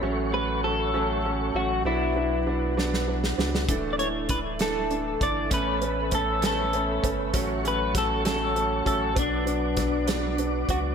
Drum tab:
HH |------------|------------|x-x-x-x-x-x-|x-x-x-x-x-x-|
SD |------------|------oo-ooo|------o-----|------o-----|
BD |------------|------------|o---o-----o-|o---o-----o-|

HH |x-x-x-x-x-x-|x-x-x-x-x-x-|
SD |----o-o-----|----o-o-----|
BD |o---o-----o-|o---o-----o-|